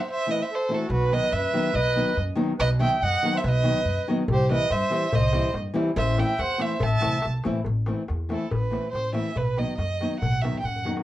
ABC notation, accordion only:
X:1
M:2/4
L:1/16
Q:1/4=142
K:none
V:1 name="Accordion"
c2 B c A2 ^F2 | ^F2 B2 B4 | B4 z4 | B2 e2 ^d3 c |
B6 z2 | G2 B2 c4 | c4 z4 | c2 e2 c2 c2 |
e4 z4 | z8 | z8 | z8 |
z8 |]